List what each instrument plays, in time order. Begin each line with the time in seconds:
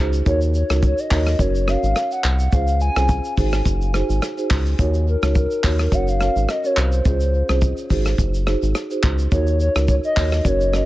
Already playing: analog synth bass C#2, marimba D#4 F#4
0.00 marimba G#4 C5
0.13 shaker
0.26 analog synth bass D#2, marimba D#4 F#4 A#4 C#5, soft synth lead C#5, kick, shaker
0.41 shaker
0.54 soft synth lead C#5, shaker
0.70 analog synth bass C#2, marimba D#4 F#4 A#4 C#5, cross-stick, shaker
0.82 soft synth lead C#5, kick, shaker
0.98 soft synth lead D#5, shaker
1.11 analog synth bass D#2, marimba D#4 F#4 A#4 C#5, kick, clap, open hi-hat, shaker
1.26 cross-stick, shaker
1.39 analog synth bass F#1, marimba C#4 F#4 A#4 C#5, soft synth lead C#5, kick, hi-hat pedal, shaker
1.55 shaker
1.67 marimba C#4 F#4 A#4 C#5, soft synth lead F5, cross-stick, shaker
1.83 analog synth bass G#1, shaker
1.96 cross-stick, shaker
2.11 soft synth lead F#5, shaker
2.24 analog synth bass C2, clap
2.39 shaker
2.52 analog synth bass C#2, marimba C#4 F4 G#4 C5, soft synth lead F5, kick, shaker
2.67 shaker
2.81 soft synth lead G#5, shaker
2.96 analog synth bass C2, marimba C#4 F4 G#4 C5, cross-stick, shaker
3.09 kick, shaker
3.24 shaker
3.37 analog synth bass G#1, marimba D#4 F#4 G#4 C5, kick, open hi-hat, shaker
3.52 cross-stick, shaker
3.65 analog synth bass F#1, kick, hi-hat pedal, shaker
3.81 shaker
3.94 marimba D#4 F#4 G#4 C5, cross-stick, shaker
4.09 analog synth bass G#1, shaker
4.22 cross-stick, shaker
4.37 marimba D#4 F#4 G#4 C5, shaker
4.50 analog synth bass C#2, kick, clap, open hi-hat, shaker
4.66 shaker
4.79 analog synth bass D#2, marimba D#4 F#4 A#4 C#5, kick, hi-hat pedal, shaker
4.94 shaker
5.08 soft synth lead A#4
5.22 analog synth bass C#2, marimba D#4 F#4 A#4 C#5, cross-stick, shaker
5.35 kick, shaker
5.51 shaker
5.63 analog synth bass D#2, marimba D#4 F#4 A#4 C#5, kick, clap, open hi-hat, shaker
5.79 cross-stick, shaker
5.92 analog synth bass F#1, marimba C#4 F#4 A#4 C#5, soft synth lead F#5, kick, hi-hat pedal, shaker
6.08 soft synth lead F5, shaker
6.20 marimba C#4 F#4 A#4 C#5, cross-stick, shaker
6.36 analog synth bass G#1, shaker
6.49 soft synth lead D#5, cross-stick, shaker
6.64 marimba C#4 F#4 A#4 C#5, soft synth lead C#5, shaker
6.77 analog synth bass C2, soft synth lead C5, clap, shaker
6.92 shaker
7.05 analog synth bass C#2, marimba C#4 F4 G#4 C5, kick, shaker
7.20 shaker
7.49 analog synth bass C2, marimba C#4 F4 G#4 C5, cross-stick, shaker
7.62 kick, shaker
7.77 shaker
7.90 analog synth bass G#1, marimba D#4 F#4 G#4 C5, kick, open hi-hat, shaker
8.05 cross-stick, shaker
8.18 analog synth bass F#1, kick, hi-hat pedal, shaker
8.34 shaker
8.47 marimba D#4 F#4 G#4 C5, cross-stick, shaker
8.62 analog synth bass G#1, shaker
8.75 cross-stick, shaker
8.90 marimba D#4 F#4 G#4 C5, shaker
9.03 analog synth bass C#2, kick, clap, shaker
9.19 shaker
9.32 analog synth bass D#2, marimba D#4 F#4 A#4 C#5, soft synth lead C#5, kick, shaker
9.47 shaker
9.60 soft synth lead C#5, shaker
9.75 analog synth bass C#2, marimba D#4 F#4 A#4 C#5, cross-stick, shaker
9.88 soft synth lead C#5, kick, shaker
10.04 soft synth lead D#5, shaker
10.16 analog synth bass D#2, marimba D#4 F#4 A#4 C#5, kick, clap, open hi-hat, shaker
10.32 cross-stick, shaker
10.45 analog synth bass F#1, marimba C#4 F#4 A#4 C#5, soft synth lead C#5, kick, hi-hat pedal, shaker
10.61 shaker
10.73 marimba C#4 F#4 A#4 C#5, soft synth lead D#5, cross-stick, shaker